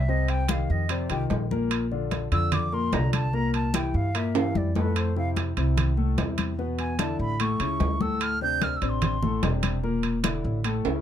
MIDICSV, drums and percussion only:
0, 0, Header, 1, 2, 480
1, 0, Start_track
1, 0, Tempo, 405954
1, 104, Time_signature, 4, 2, 24, 8
1, 13021, End_track
2, 0, Start_track
2, 0, Title_t, "Drums"
2, 103, Note_on_c, 9, 63, 38
2, 221, Note_off_c, 9, 63, 0
2, 336, Note_on_c, 9, 65, 63
2, 344, Note_on_c, 9, 63, 33
2, 454, Note_off_c, 9, 65, 0
2, 462, Note_off_c, 9, 63, 0
2, 573, Note_on_c, 9, 65, 92
2, 573, Note_on_c, 9, 66, 61
2, 580, Note_on_c, 9, 63, 101
2, 691, Note_off_c, 9, 65, 0
2, 691, Note_off_c, 9, 66, 0
2, 698, Note_off_c, 9, 63, 0
2, 823, Note_on_c, 9, 63, 36
2, 941, Note_off_c, 9, 63, 0
2, 1055, Note_on_c, 9, 65, 91
2, 1065, Note_on_c, 9, 63, 33
2, 1173, Note_off_c, 9, 65, 0
2, 1183, Note_off_c, 9, 63, 0
2, 1296, Note_on_c, 9, 65, 66
2, 1306, Note_on_c, 9, 63, 35
2, 1414, Note_off_c, 9, 65, 0
2, 1424, Note_off_c, 9, 63, 0
2, 1538, Note_on_c, 9, 66, 77
2, 1546, Note_on_c, 9, 63, 86
2, 1656, Note_off_c, 9, 66, 0
2, 1664, Note_off_c, 9, 63, 0
2, 1789, Note_on_c, 9, 63, 83
2, 1907, Note_off_c, 9, 63, 0
2, 2021, Note_on_c, 9, 65, 93
2, 2022, Note_on_c, 9, 63, 37
2, 2139, Note_off_c, 9, 65, 0
2, 2141, Note_off_c, 9, 63, 0
2, 2265, Note_on_c, 9, 63, 35
2, 2383, Note_off_c, 9, 63, 0
2, 2499, Note_on_c, 9, 65, 68
2, 2499, Note_on_c, 9, 66, 56
2, 2504, Note_on_c, 9, 63, 63
2, 2617, Note_off_c, 9, 65, 0
2, 2617, Note_off_c, 9, 66, 0
2, 2622, Note_off_c, 9, 63, 0
2, 2741, Note_on_c, 9, 65, 66
2, 2743, Note_on_c, 9, 63, 34
2, 2859, Note_off_c, 9, 65, 0
2, 2861, Note_off_c, 9, 63, 0
2, 2978, Note_on_c, 9, 65, 95
2, 2981, Note_on_c, 9, 63, 31
2, 2981, Note_on_c, 9, 64, 81
2, 3096, Note_off_c, 9, 65, 0
2, 3100, Note_off_c, 9, 63, 0
2, 3100, Note_off_c, 9, 64, 0
2, 3220, Note_on_c, 9, 63, 37
2, 3338, Note_off_c, 9, 63, 0
2, 3459, Note_on_c, 9, 63, 79
2, 3462, Note_on_c, 9, 65, 65
2, 3462, Note_on_c, 9, 66, 92
2, 3577, Note_off_c, 9, 63, 0
2, 3581, Note_off_c, 9, 65, 0
2, 3581, Note_off_c, 9, 66, 0
2, 3702, Note_on_c, 9, 63, 76
2, 3702, Note_on_c, 9, 65, 86
2, 3820, Note_off_c, 9, 63, 0
2, 3821, Note_off_c, 9, 65, 0
2, 3941, Note_on_c, 9, 63, 38
2, 4060, Note_off_c, 9, 63, 0
2, 4183, Note_on_c, 9, 63, 33
2, 4185, Note_on_c, 9, 65, 65
2, 4301, Note_off_c, 9, 63, 0
2, 4303, Note_off_c, 9, 65, 0
2, 4421, Note_on_c, 9, 63, 92
2, 4427, Note_on_c, 9, 65, 96
2, 4427, Note_on_c, 9, 66, 61
2, 4539, Note_off_c, 9, 63, 0
2, 4546, Note_off_c, 9, 65, 0
2, 4546, Note_off_c, 9, 66, 0
2, 4661, Note_on_c, 9, 63, 31
2, 4779, Note_off_c, 9, 63, 0
2, 4905, Note_on_c, 9, 63, 34
2, 4905, Note_on_c, 9, 65, 100
2, 5023, Note_off_c, 9, 63, 0
2, 5023, Note_off_c, 9, 65, 0
2, 5143, Note_on_c, 9, 63, 34
2, 5144, Note_on_c, 9, 65, 94
2, 5262, Note_off_c, 9, 63, 0
2, 5263, Note_off_c, 9, 65, 0
2, 5383, Note_on_c, 9, 63, 88
2, 5501, Note_off_c, 9, 63, 0
2, 5622, Note_on_c, 9, 63, 80
2, 5630, Note_on_c, 9, 66, 76
2, 5740, Note_off_c, 9, 63, 0
2, 5749, Note_off_c, 9, 66, 0
2, 5865, Note_on_c, 9, 65, 92
2, 5866, Note_on_c, 9, 63, 37
2, 5983, Note_off_c, 9, 65, 0
2, 5984, Note_off_c, 9, 63, 0
2, 6106, Note_on_c, 9, 63, 36
2, 6224, Note_off_c, 9, 63, 0
2, 6343, Note_on_c, 9, 63, 57
2, 6348, Note_on_c, 9, 65, 77
2, 6348, Note_on_c, 9, 66, 59
2, 6462, Note_off_c, 9, 63, 0
2, 6466, Note_off_c, 9, 65, 0
2, 6466, Note_off_c, 9, 66, 0
2, 6586, Note_on_c, 9, 65, 67
2, 6588, Note_on_c, 9, 63, 36
2, 6704, Note_off_c, 9, 65, 0
2, 6706, Note_off_c, 9, 63, 0
2, 6826, Note_on_c, 9, 63, 34
2, 6826, Note_on_c, 9, 64, 79
2, 6829, Note_on_c, 9, 65, 102
2, 6945, Note_off_c, 9, 63, 0
2, 6945, Note_off_c, 9, 64, 0
2, 6948, Note_off_c, 9, 65, 0
2, 7064, Note_on_c, 9, 63, 35
2, 7182, Note_off_c, 9, 63, 0
2, 7306, Note_on_c, 9, 63, 84
2, 7307, Note_on_c, 9, 65, 71
2, 7307, Note_on_c, 9, 66, 91
2, 7424, Note_off_c, 9, 63, 0
2, 7425, Note_off_c, 9, 65, 0
2, 7425, Note_off_c, 9, 66, 0
2, 7541, Note_on_c, 9, 65, 94
2, 7550, Note_on_c, 9, 63, 85
2, 7660, Note_off_c, 9, 65, 0
2, 7669, Note_off_c, 9, 63, 0
2, 7789, Note_on_c, 9, 63, 37
2, 7908, Note_off_c, 9, 63, 0
2, 8023, Note_on_c, 9, 65, 59
2, 8031, Note_on_c, 9, 63, 34
2, 8142, Note_off_c, 9, 65, 0
2, 8149, Note_off_c, 9, 63, 0
2, 8263, Note_on_c, 9, 65, 88
2, 8263, Note_on_c, 9, 66, 60
2, 8267, Note_on_c, 9, 63, 94
2, 8381, Note_off_c, 9, 65, 0
2, 8381, Note_off_c, 9, 66, 0
2, 8385, Note_off_c, 9, 63, 0
2, 8510, Note_on_c, 9, 63, 34
2, 8629, Note_off_c, 9, 63, 0
2, 8747, Note_on_c, 9, 65, 94
2, 8748, Note_on_c, 9, 63, 34
2, 8865, Note_off_c, 9, 65, 0
2, 8866, Note_off_c, 9, 63, 0
2, 8984, Note_on_c, 9, 65, 72
2, 8987, Note_on_c, 9, 63, 36
2, 9103, Note_off_c, 9, 65, 0
2, 9106, Note_off_c, 9, 63, 0
2, 9223, Note_on_c, 9, 66, 86
2, 9228, Note_on_c, 9, 63, 82
2, 9342, Note_off_c, 9, 66, 0
2, 9346, Note_off_c, 9, 63, 0
2, 9466, Note_on_c, 9, 63, 84
2, 9584, Note_off_c, 9, 63, 0
2, 9706, Note_on_c, 9, 65, 97
2, 9709, Note_on_c, 9, 63, 36
2, 9824, Note_off_c, 9, 65, 0
2, 9827, Note_off_c, 9, 63, 0
2, 9947, Note_on_c, 9, 63, 36
2, 10065, Note_off_c, 9, 63, 0
2, 10187, Note_on_c, 9, 63, 68
2, 10187, Note_on_c, 9, 65, 69
2, 10187, Note_on_c, 9, 66, 61
2, 10305, Note_off_c, 9, 63, 0
2, 10305, Note_off_c, 9, 65, 0
2, 10305, Note_off_c, 9, 66, 0
2, 10426, Note_on_c, 9, 65, 65
2, 10427, Note_on_c, 9, 63, 34
2, 10545, Note_off_c, 9, 63, 0
2, 10545, Note_off_c, 9, 65, 0
2, 10663, Note_on_c, 9, 65, 91
2, 10668, Note_on_c, 9, 63, 32
2, 10668, Note_on_c, 9, 64, 83
2, 10781, Note_off_c, 9, 65, 0
2, 10787, Note_off_c, 9, 63, 0
2, 10787, Note_off_c, 9, 64, 0
2, 10908, Note_on_c, 9, 63, 38
2, 10908, Note_on_c, 9, 64, 74
2, 11026, Note_off_c, 9, 63, 0
2, 11026, Note_off_c, 9, 64, 0
2, 11148, Note_on_c, 9, 65, 70
2, 11148, Note_on_c, 9, 66, 83
2, 11149, Note_on_c, 9, 63, 91
2, 11266, Note_off_c, 9, 65, 0
2, 11266, Note_off_c, 9, 66, 0
2, 11267, Note_off_c, 9, 63, 0
2, 11385, Note_on_c, 9, 65, 99
2, 11388, Note_on_c, 9, 63, 78
2, 11503, Note_off_c, 9, 65, 0
2, 11506, Note_off_c, 9, 63, 0
2, 11630, Note_on_c, 9, 63, 38
2, 11749, Note_off_c, 9, 63, 0
2, 11862, Note_on_c, 9, 65, 66
2, 11870, Note_on_c, 9, 63, 35
2, 11980, Note_off_c, 9, 65, 0
2, 11988, Note_off_c, 9, 63, 0
2, 12105, Note_on_c, 9, 65, 104
2, 12105, Note_on_c, 9, 66, 62
2, 12108, Note_on_c, 9, 63, 98
2, 12223, Note_off_c, 9, 65, 0
2, 12223, Note_off_c, 9, 66, 0
2, 12226, Note_off_c, 9, 63, 0
2, 12352, Note_on_c, 9, 63, 34
2, 12470, Note_off_c, 9, 63, 0
2, 12586, Note_on_c, 9, 65, 89
2, 12591, Note_on_c, 9, 63, 37
2, 12704, Note_off_c, 9, 65, 0
2, 12709, Note_off_c, 9, 63, 0
2, 12828, Note_on_c, 9, 65, 96
2, 12832, Note_on_c, 9, 63, 36
2, 12946, Note_off_c, 9, 65, 0
2, 12951, Note_off_c, 9, 63, 0
2, 13021, End_track
0, 0, End_of_file